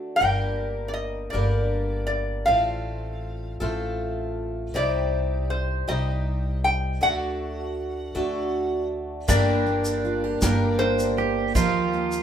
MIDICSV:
0, 0, Header, 1, 7, 480
1, 0, Start_track
1, 0, Key_signature, -2, "minor"
1, 0, Tempo, 756620
1, 129, Time_signature, 6, 3, 24, 8
1, 7757, End_track
2, 0, Start_track
2, 0, Title_t, "Resonator guitar played with a steel bar"
2, 0, Program_c, 0, 25
2, 102, Note_on_c, 0, 79, 79
2, 526, Note_off_c, 0, 79, 0
2, 560, Note_on_c, 0, 74, 48
2, 591, Note_off_c, 0, 74, 0
2, 593, Note_on_c, 0, 75, 60
2, 824, Note_off_c, 0, 75, 0
2, 825, Note_on_c, 0, 74, 57
2, 1303, Note_off_c, 0, 74, 0
2, 1311, Note_on_c, 0, 74, 59
2, 1558, Note_on_c, 0, 77, 73
2, 1568, Note_off_c, 0, 74, 0
2, 2259, Note_off_c, 0, 77, 0
2, 3018, Note_on_c, 0, 74, 67
2, 3488, Note_off_c, 0, 74, 0
2, 3490, Note_on_c, 0, 72, 64
2, 3734, Note_on_c, 0, 75, 67
2, 3738, Note_off_c, 0, 72, 0
2, 4188, Note_off_c, 0, 75, 0
2, 4215, Note_on_c, 0, 79, 72
2, 4456, Note_off_c, 0, 79, 0
2, 4458, Note_on_c, 0, 78, 76
2, 5629, Note_off_c, 0, 78, 0
2, 5893, Note_on_c, 0, 74, 92
2, 6841, Note_off_c, 0, 74, 0
2, 6844, Note_on_c, 0, 72, 84
2, 7757, Note_off_c, 0, 72, 0
2, 7757, End_track
3, 0, Start_track
3, 0, Title_t, "Pedal steel guitar"
3, 0, Program_c, 1, 26
3, 5891, Note_on_c, 1, 62, 74
3, 7095, Note_on_c, 1, 67, 90
3, 7126, Note_off_c, 1, 62, 0
3, 7328, Note_off_c, 1, 67, 0
3, 7330, Note_on_c, 1, 65, 91
3, 7757, Note_off_c, 1, 65, 0
3, 7757, End_track
4, 0, Start_track
4, 0, Title_t, "Steel-string acoustic guitar"
4, 0, Program_c, 2, 25
4, 5889, Note_on_c, 2, 58, 76
4, 6129, Note_off_c, 2, 58, 0
4, 6131, Note_on_c, 2, 58, 54
4, 6372, Note_on_c, 2, 65, 50
4, 6495, Note_off_c, 2, 65, 0
4, 6495, Note_on_c, 2, 67, 49
4, 6613, Note_off_c, 2, 58, 0
4, 6615, Note_on_c, 2, 58, 64
4, 6855, Note_on_c, 2, 62, 49
4, 7086, Note_off_c, 2, 67, 0
4, 7093, Note_on_c, 2, 67, 69
4, 7333, Note_on_c, 2, 53, 71
4, 7380, Note_off_c, 2, 58, 0
4, 7380, Note_off_c, 2, 62, 0
4, 7571, Note_on_c, 2, 58, 48
4, 7757, Note_off_c, 2, 53, 0
4, 7757, Note_off_c, 2, 58, 0
4, 7757, Note_off_c, 2, 67, 0
4, 7757, End_track
5, 0, Start_track
5, 0, Title_t, "Twelve-string acoustic guitar"
5, 0, Program_c, 3, 25
5, 0, Note_on_c, 3, 50, 43
5, 0, Note_on_c, 3, 57, 40
5, 0, Note_on_c, 3, 62, 50
5, 0, Note_on_c, 3, 66, 50
5, 0, Note_on_c, 3, 69, 51
5, 122, Note_off_c, 3, 50, 0
5, 125, Note_off_c, 3, 69, 0
5, 127, Note_on_c, 3, 43, 51
5, 129, Note_off_c, 3, 62, 0
5, 129, Note_off_c, 3, 66, 0
5, 129, Note_on_c, 3, 50, 55
5, 132, Note_off_c, 3, 57, 0
5, 135, Note_on_c, 3, 55, 58
5, 137, Note_on_c, 3, 58, 59
5, 142, Note_on_c, 3, 70, 56
5, 835, Note_off_c, 3, 70, 0
5, 842, Note_off_c, 3, 58, 0
5, 842, Note_on_c, 3, 70, 54
5, 847, Note_off_c, 3, 55, 0
5, 848, Note_off_c, 3, 50, 0
5, 848, Note_on_c, 3, 62, 52
5, 849, Note_off_c, 3, 43, 0
5, 850, Note_on_c, 3, 58, 51
5, 855, Note_on_c, 3, 55, 54
5, 856, Note_on_c, 3, 50, 38
5, 857, Note_on_c, 3, 43, 41
5, 1556, Note_off_c, 3, 55, 0
5, 1559, Note_on_c, 3, 57, 46
5, 1563, Note_off_c, 3, 58, 0
5, 1566, Note_on_c, 3, 60, 60
5, 1567, Note_off_c, 3, 70, 0
5, 1570, Note_off_c, 3, 62, 0
5, 1572, Note_on_c, 3, 65, 59
5, 1572, Note_on_c, 3, 69, 65
5, 1573, Note_off_c, 3, 50, 0
5, 1574, Note_off_c, 3, 43, 0
5, 2278, Note_off_c, 3, 69, 0
5, 2285, Note_off_c, 3, 57, 0
5, 2285, Note_off_c, 3, 65, 0
5, 2286, Note_on_c, 3, 69, 65
5, 2292, Note_on_c, 3, 65, 58
5, 2293, Note_off_c, 3, 60, 0
5, 2295, Note_on_c, 3, 60, 53
5, 2298, Note_on_c, 3, 57, 49
5, 3006, Note_off_c, 3, 60, 0
5, 3007, Note_on_c, 3, 48, 63
5, 3009, Note_off_c, 3, 69, 0
5, 3011, Note_off_c, 3, 57, 0
5, 3012, Note_off_c, 3, 65, 0
5, 3013, Note_on_c, 3, 55, 55
5, 3014, Note_on_c, 3, 60, 56
5, 3019, Note_on_c, 3, 63, 55
5, 3020, Note_on_c, 3, 67, 64
5, 3720, Note_off_c, 3, 67, 0
5, 3726, Note_off_c, 3, 63, 0
5, 3728, Note_on_c, 3, 67, 57
5, 3729, Note_off_c, 3, 48, 0
5, 3731, Note_off_c, 3, 60, 0
5, 3733, Note_off_c, 3, 55, 0
5, 3733, Note_on_c, 3, 63, 50
5, 3738, Note_on_c, 3, 60, 50
5, 3740, Note_on_c, 3, 55, 46
5, 3743, Note_on_c, 3, 48, 44
5, 4443, Note_off_c, 3, 48, 0
5, 4446, Note_off_c, 3, 55, 0
5, 4446, Note_on_c, 3, 50, 53
5, 4449, Note_on_c, 3, 57, 61
5, 4450, Note_off_c, 3, 67, 0
5, 4452, Note_off_c, 3, 60, 0
5, 4453, Note_off_c, 3, 63, 0
5, 4454, Note_on_c, 3, 62, 55
5, 4458, Note_on_c, 3, 66, 62
5, 4461, Note_on_c, 3, 69, 61
5, 5162, Note_off_c, 3, 69, 0
5, 5166, Note_off_c, 3, 66, 0
5, 5167, Note_off_c, 3, 62, 0
5, 5169, Note_off_c, 3, 50, 0
5, 5169, Note_on_c, 3, 69, 63
5, 5171, Note_off_c, 3, 57, 0
5, 5173, Note_on_c, 3, 66, 50
5, 5175, Note_on_c, 3, 62, 53
5, 5177, Note_on_c, 3, 57, 54
5, 5183, Note_on_c, 3, 50, 48
5, 5881, Note_off_c, 3, 50, 0
5, 5886, Note_on_c, 3, 43, 70
5, 5889, Note_on_c, 3, 50, 76
5, 5890, Note_off_c, 3, 69, 0
5, 5891, Note_off_c, 3, 57, 0
5, 5892, Note_off_c, 3, 66, 0
5, 5893, Note_off_c, 3, 62, 0
5, 5893, Note_on_c, 3, 55, 65
5, 5896, Note_on_c, 3, 58, 70
5, 5896, Note_on_c, 3, 67, 77
5, 5898, Note_on_c, 3, 70, 74
5, 6607, Note_off_c, 3, 70, 0
5, 6608, Note_off_c, 3, 43, 0
5, 6609, Note_off_c, 3, 67, 0
5, 6610, Note_off_c, 3, 50, 0
5, 6610, Note_on_c, 3, 70, 75
5, 6611, Note_off_c, 3, 58, 0
5, 6612, Note_on_c, 3, 67, 64
5, 6613, Note_off_c, 3, 55, 0
5, 6614, Note_on_c, 3, 58, 70
5, 6616, Note_on_c, 3, 55, 62
5, 6617, Note_on_c, 3, 50, 58
5, 6624, Note_on_c, 3, 43, 61
5, 7326, Note_off_c, 3, 50, 0
5, 7327, Note_off_c, 3, 58, 0
5, 7328, Note_on_c, 3, 51, 68
5, 7329, Note_off_c, 3, 55, 0
5, 7330, Note_off_c, 3, 70, 0
5, 7332, Note_on_c, 3, 53, 74
5, 7334, Note_off_c, 3, 67, 0
5, 7334, Note_on_c, 3, 58, 70
5, 7336, Note_on_c, 3, 65, 72
5, 7337, Note_off_c, 3, 43, 0
5, 7339, Note_on_c, 3, 67, 83
5, 7757, Note_off_c, 3, 51, 0
5, 7757, Note_off_c, 3, 53, 0
5, 7757, Note_off_c, 3, 58, 0
5, 7757, Note_off_c, 3, 65, 0
5, 7757, Note_off_c, 3, 67, 0
5, 7757, End_track
6, 0, Start_track
6, 0, Title_t, "Upright bass"
6, 0, Program_c, 4, 32
6, 134, Note_on_c, 4, 31, 70
6, 827, Note_off_c, 4, 31, 0
6, 852, Note_on_c, 4, 31, 70
6, 1546, Note_off_c, 4, 31, 0
6, 1573, Note_on_c, 4, 33, 76
6, 2267, Note_off_c, 4, 33, 0
6, 2293, Note_on_c, 4, 33, 73
6, 2987, Note_off_c, 4, 33, 0
6, 3012, Note_on_c, 4, 36, 77
6, 3707, Note_off_c, 4, 36, 0
6, 3734, Note_on_c, 4, 36, 68
6, 4428, Note_off_c, 4, 36, 0
6, 4452, Note_on_c, 4, 38, 68
6, 5147, Note_off_c, 4, 38, 0
6, 5173, Note_on_c, 4, 38, 68
6, 5867, Note_off_c, 4, 38, 0
6, 5891, Note_on_c, 4, 31, 91
6, 6585, Note_off_c, 4, 31, 0
6, 6613, Note_on_c, 4, 31, 85
6, 7306, Note_off_c, 4, 31, 0
6, 7328, Note_on_c, 4, 39, 95
6, 7757, Note_off_c, 4, 39, 0
6, 7757, End_track
7, 0, Start_track
7, 0, Title_t, "Drums"
7, 5888, Note_on_c, 9, 49, 85
7, 5891, Note_on_c, 9, 36, 83
7, 5891, Note_on_c, 9, 82, 79
7, 5952, Note_off_c, 9, 49, 0
7, 5954, Note_off_c, 9, 36, 0
7, 5955, Note_off_c, 9, 82, 0
7, 6130, Note_on_c, 9, 42, 52
7, 6194, Note_off_c, 9, 42, 0
7, 6248, Note_on_c, 9, 82, 72
7, 6312, Note_off_c, 9, 82, 0
7, 6372, Note_on_c, 9, 42, 50
7, 6435, Note_off_c, 9, 42, 0
7, 6609, Note_on_c, 9, 82, 87
7, 6610, Note_on_c, 9, 36, 64
7, 6611, Note_on_c, 9, 38, 80
7, 6672, Note_off_c, 9, 82, 0
7, 6674, Note_off_c, 9, 36, 0
7, 6674, Note_off_c, 9, 38, 0
7, 6851, Note_on_c, 9, 42, 39
7, 6914, Note_off_c, 9, 42, 0
7, 6973, Note_on_c, 9, 82, 59
7, 7037, Note_off_c, 9, 82, 0
7, 7089, Note_on_c, 9, 42, 51
7, 7152, Note_off_c, 9, 42, 0
7, 7326, Note_on_c, 9, 42, 64
7, 7328, Note_on_c, 9, 36, 83
7, 7331, Note_on_c, 9, 82, 82
7, 7390, Note_off_c, 9, 42, 0
7, 7392, Note_off_c, 9, 36, 0
7, 7395, Note_off_c, 9, 82, 0
7, 7568, Note_on_c, 9, 42, 42
7, 7632, Note_off_c, 9, 42, 0
7, 7688, Note_on_c, 9, 82, 63
7, 7751, Note_off_c, 9, 82, 0
7, 7757, End_track
0, 0, End_of_file